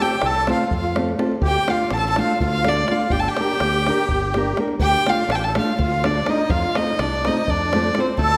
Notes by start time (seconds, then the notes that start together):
0.00 A3 C4 F4 G4 A4 G5
0.22 C2 A4, davul high
0.26 A5
0.47 A3 C4 F4 A4, davul high
0.53 F5
0.59 davul high
0.71 F2 F4, davul low
0.76 F5
0.84 davul high
0.95 A3 C4 F4 A4, davul high
1.08 davul high
1.18 A3 C4 F4 A4, davul high
1.32 davul high
1.41 D2 G4, davul low
1.47 G5
1.55 davul high
1.67 A3 D4 F4 A4 F5, davul high
1.90 A1 A4 A5, davul high
1.98 A4 A5
2.06 A4 A5
2.16 A3 D4 F4 A4, davul high
2.22 F5
2.29 davul high
2.40 D2 F4, davul low
2.45 F5
2.53 davul high
2.64 A3 D4 F4 A4, davul high
2.69 D5
2.76 davul high
2.88 A3 D4 F4 A4 F5, davul high
2.99 davul high
3.10 G1 G4 G5, davul low
3.20 A4 A5
3.24 davul high
3.28 G4 G5
3.37 A#3 D4 G4, davul high
3.41 A#4
3.49 davul high
3.60 D2, davul high
3.73 davul high
3.86 A#3 D4 G4 A#4, davul high
3.98 davul high
4.09 G1, davul low
4.22 davul high
4.34 A#3 D4 G4 A#4, davul high
4.46 davul high
4.57 A#3 D4 G4 A#4, davul high
4.68 davul high
4.79 D2 G4 G5, davul low
4.94 davul high
5.06 A3 D4 F4 A4 F5, davul high
5.29 A1 A4 A5, davul high
5.36 G4 G5
5.44 A4 A5
5.55 A3 D4 F4 A4 F5, davul high
5.68 davul high
5.79 D2 F4 F5, davul low
5.92 davul high
6.03 A3 D4 F4 A4 D5, davul high
6.15 davul high
6.26 A3 D4 D#4 F4 A4 D#5, davul high
6.38 davul high
6.50 F2 F4 F5, davul low
6.62 davul high
6.75 A3 C4 D#4 F4 A4 D#5, davul high
6.99 C2 D4 D5, davul high
7.24 A3 C4 D#4 F4 A4 D#5, davul high
7.37 davul high
7.48 F2 D4 D5, davul low
7.61 davul high
7.73 A3 C4 F4 A4, davul high
7.84 davul high
7.95 A3 C4 F4 A4, davul high
8.00 C5
8.06 davul high
8.18 D2 A4 A5, davul low
8.31 davul high